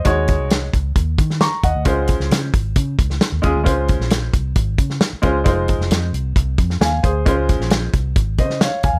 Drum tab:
HH |x-x-x-x-x-x-x-x-|x-x-x-x-x-x-x-x-|x-x-x-x-x-x-x-x-|x-x-x-x-x-x-x-x-|
SD |----o------oo---|---oo------oo---|---oo------oo---|---oo------oo---|
BD |o-o---o-o-o---o-|o-o---o-o-o---o-|o-o---o-o-o---o-|o-o-----o-o---o-|

HH |x-x-x-x-x-x-x-x-|
SD |---oo------oo---|
BD |o-o---o-o-o---o-|